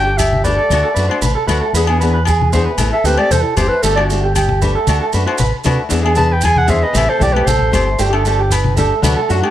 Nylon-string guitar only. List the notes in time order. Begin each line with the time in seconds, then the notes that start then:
Already playing: G4
0.45 A3 D4 G4
0.72 A3 D4 F#4
0.96 A3 D4 F#4
1.09 D4 F#4
1.47 A3 D4 F#4
1.75 B3 D4 G#4, muted nylon-string guitar stroke
1.89 B3 D4 G#4
2.01 E3 B3 D4 G#4
2.53 E3 B3 D4 G#4
2.79 E3 A3, muted nylon-string guitar stroke
3.06 A3 C4 G4
3.18 A3 C4 G4
3.58 E3 A3 C4 G4
3.83 A3 D4 G4
3.97 D4 G4
4.11 A3 D4 G4
4.62 A3 D4 G4
4.87 A3 D4 F#4
5.13 A3 D4 F#4
5.26 D4 F#4
5.64 A3 D4 F#4
5.89 E3 B3 D4 G#4
6.02 B3 D4 G#4
6.15 E3 B3 D4 G#4
6.66 E3 B3 D4 G#4
6.93 E3 A3 C4 G4
7.19 E3 A3 G4, muted nylon-string guitar stroke
7.32 A3 C4 G4
7.72 A3 C4 G4, muted nylon-string guitar stroke
7.99 A3 D4 G4
8.10 D4 G4
8.25 A3 D4 G4
8.76 A3 D4 G4
9.02 F#3 A3 D4 F#4
9.29 F#3 A3 D4 F#4
9.42 A3 D4 F#4